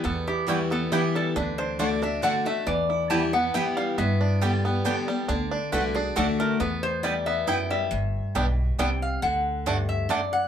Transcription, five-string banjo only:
\new Staff \with { instrumentName = "Five-string banjo" } { \time 3/4 \key e \minor \tempo 4 = 137 <g b>8 e'8 g8 b8 e'8 g8 | d'8 d'8 d'8 d'8 d'8 a8 | e8 e'8 g'8 b8 e'8 g8 | b8 d'8 g8 b8 d'8 g8 |
d'8 d'8 d'8 d'8 d'8 a8 | b4 g8 b8 e'8 g8 | r4 <g b d'>8 r8 <g b d'>8 r8 | r4 <a d'>8 r8 <a d'>8 r8 | }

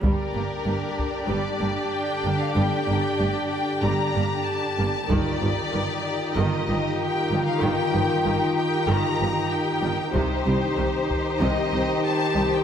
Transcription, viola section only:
\new Staff \with { instrumentName = "Viola section" } { \clef bass \time 4/4 \key g \minor \tempo 4 = 95 << { d'1~ | d'1 | ees'1~ | ees'1 |
ees'1 | } \\ { g8 bes8 bes8 r8 g8 bes8 r8 bes8 | g8 bes8 a8 r8 g8 bes8 r8 bes8 | ees8 f8 ees8 r8 ees8 f8 r8 f8 | ees8 f8 ees8 r8 ees8 f8 r8 f8 |
c8 g8 ees8 r8 c8 g8 r8 g8 | } >> }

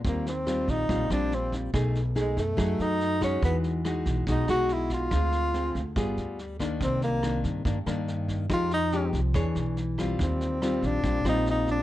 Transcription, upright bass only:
\new Staff \with { instrumentName = "Upright bass" } { \clef bass \time 4/4 \key ees \major \tempo 4 = 142 ees,4. bes,,8 bes,,8 bes,,4. | b,,4. fis,8 fis,8 fis,4. | e,4. b,,8 b,,8 b,,4. | d,4. d,8 g,,8 d,4. |
c,4. g,8 g,8 g,4. | f,4. c,8 e,8 b,,4. | ees,4. bes,,8 bes,,8 bes,,4. | }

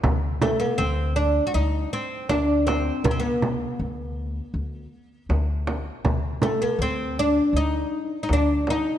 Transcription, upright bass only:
\new Staff \with { instrumentName = "Upright bass" } { \clef bass \time 4/4 \tempo 4 = 80 d,4 d,4 d,8 r8 d,4 | d,4 d,4 d,8 r8 d,4 | d,4 d,4 d,8 r8 d,4 | }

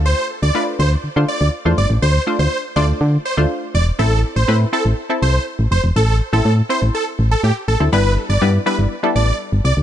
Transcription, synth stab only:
\new Staff \with { instrumentName = "Synth stab" } { \time 4/4 \key a \minor \tempo 4 = 122 <a d' f' c''>8. r16 <a d' f' b'>4 r16 <a d' f' c''>8. r16 <a d' f' c''>8.~ | <a d' f' c''>16 r16 <a d' f' c''>8. r16 <a d' f' c''>4 r16 <a d' f' c''>4 r16 | <c' e' a'>8. r16 <c' e' b'>8 <c' e' a'>8 r16 <c' e' a'>4. r16 | r8. <c' e' a'>8 r16 <c' e' c''>4. r8. <c' e' a'>16 |
<g b d' e' b'>8. r16 <g b d' e' b'>8 <g b d' e' b'>8 r16 <g b d' e' a'>4. r16 | }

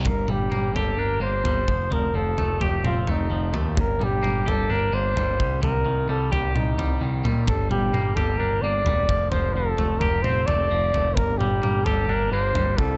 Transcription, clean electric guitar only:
\new Staff \with { instrumentName = "Clean electric guitar" } { \clef bass \time 4/4 \key g \minor \tempo 4 = 130 g,8 g8 bes8 g'8 d'8 bes8 g8 f8 | f8 f8 a8 g'8 c'8 a8 f8 a8 | g,8 g8 bes8 g'8 d'8 bes8 g8 c8 | c8 ees8 g8 g'4 g8 ees8 g8 |
g,8 g8 bes8 g'8 d'8 bes8 g8 f8 | f8 f8 a8 g'8 c'8 a8 f8 a8 | g,8 g8 bes8 g'8 d'8 bes8 g8 c8 | }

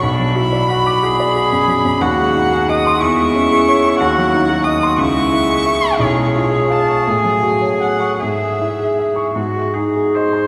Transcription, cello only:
\new Staff \with { instrumentName = "Cello" } { \time 6/8 \key b \dorian \tempo 4. = 59 d'8 e'8 fis'8 gis'4. | \key cis \minor fis'4. e'4. | ges'4. e'4. | gis'2. |
gis'4. fis'8 gis'8 bis'8 | }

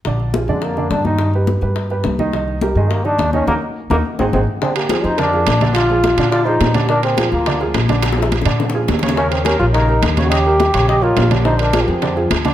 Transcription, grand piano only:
\new Staff \with { instrumentName = "Grand piano" } { \time 4/4 \key bes \mixolydian \tempo 4 = 211 <d d' d''>4 <f f' aes'>8 <d d' d''>4 <d d' d''>4 <ees ees' ees''>8~ | <ees ees' ees''>8 <g g' b'>4 <g g' b'>4 <g g' b'>4 <dis dis' dis''>8 | <ees ees' ees''>4 <g g' bes'>8 <ees ees' ees''>4 <ees ees' ees''>4 <ees ees' ees''>8 | <ees' ges' bes'>8 r4 <ees' ges' bes'>8 r8 <ees' ges' aes'>8 <ees' ges' aes'>8 r8 |
<d d' d''>4 <f f' aes'>4 <d d' d''>8 <f f' aes'>4 <d d' d''>8~ | <d d' d''>8 <f f' aes'>4 <d d' d''>4 <f f' aes'>4 <d d' d''>8 | <d d' d''>4 <f f' aes'>4 <d d' d''>8 <f f' aes'>4 <d d' d''>8~ | <d d' d''>8 <f f' aes'>4 <d d' d''>4 <f f' aes'>4 <des des' des''>8 |
<des des' des''>4 <g g' bes'>4 <des des' des''>8 <g g' bes'>4 <des des' des''>8~ | <des des' des''>8 <g g' bes'>4 <des des' des''>4 <g g' bes'>4 <d d' d''>8 | <d d' d''>4 <f f' aes'>4 <d d' d''>8 <f f' aes'>4 <d d' d''>8 | }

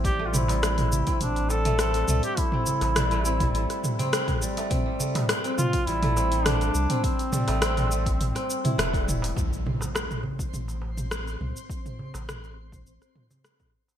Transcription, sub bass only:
\new Staff \with { instrumentName = "Sub bass" } { \clef bass \time 4/4 \key a \minor \tempo 4 = 103 a,,4.~ a,,16 r16 a,,4. c,16 r16 | r8. a,,4~ a,,16 a,,16 r4. r16 | r2 a,,4. c,16 r16 | r8. a,,4~ a,,16 a,,16 r8. e,,4 |
r2 a,,4. c,16 r16 | r8. a,,4~ a,,16 a,,16 r4. r16 | }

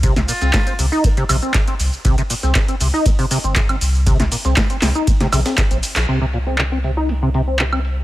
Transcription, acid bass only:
\new Staff \with { instrumentName = "Acid bass" } { \clef bass \time 4/4 \key c \minor \tempo 4 = 119 c16 c16 bes,16 c'16 c16 c'16 c16 ees'16 g16 c16 c16 c'16 c16 c'16 r8 | c16 c16 bes,16 c'16 c16 c'16 c16 ees'16 g16 c16 c16 c'16 c16 c'16 r8 | c16 c16 bes,16 c'16 c16 c'16 c16 ees'16 g16 c16 c16 c'16 c16 c'16 r8 | c16 c16 bes,16 c'16 c16 c'16 c16 ees'16 g16 c16 c16 c'16 c16 c'16 r8 | }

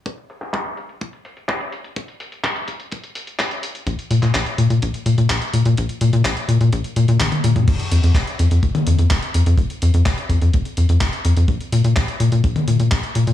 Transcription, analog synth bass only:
\new Staff \with { instrumentName = "Analog synth bass" } { \clef bass \time 4/4 \key bes \dorian \tempo 4 = 126 r1 | r1 | bes,,16 r16 bes,16 bes,16 bes,,16 r16 bes,16 bes,16 bes,,16 r16 bes,16 bes,16 bes,,16 r16 bes,16 bes,16 | bes,,16 r16 bes,16 bes,16 bes,,16 r16 bes,16 bes,16 bes,,16 r16 bes,16 bes,16 bes,,16 r16 bes,16 bes,16 |
f,,16 r16 f,16 f,16 f,,16 r16 f,16 f,16 f,,16 r16 f,16 f,16 f,,16 r16 f,16 f,16 | f,,16 r16 f,16 f,16 f,,16 r16 f,16 f,16 f,,16 r16 f,16 f,16 f,,16 r16 f,16 f,16 | bes,,16 r16 bes,16 bes,16 bes,,16 r16 bes,16 bes,16 bes,,16 r16 bes,16 bes,16 bes,,16 r16 bes,16 bes,16 | }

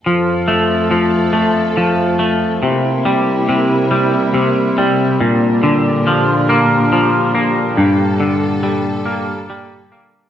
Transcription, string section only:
\new Staff \with { instrumentName = "String section" } { \clef bass \time 6/8 \key f \major \tempo 4. = 47 << { <f, a'>2. | <c e'>2. | <bes, d'>2. | <bes, a'>2. | } \\ { r2. | bes2. | g2.~ | g2. | } >> }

